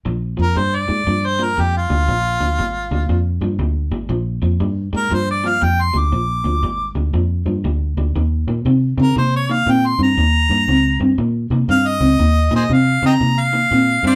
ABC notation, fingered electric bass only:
X:1
M:4/4
L:1/8
Q:"Swing" 1/4=119
K:Bbmix
V:1 name="Fingered electric bass" clef=bass
B,,, F,, G,, A,, G,,2 F,, D,, | B,,, D,, A,,, D,, F,, G,, D,, A,,, | B,,, F,, G,, A,, G,,2 F,, D,, | B,,, D,, A,,, D,, F,, G,, D,, D,, |
E,, B,, C, _D, C,2 B,, G,, | E,, G,, _D,, G,, B,, C, G,, D,, | E,, B,, C, _D, C,2 B,, G,, |]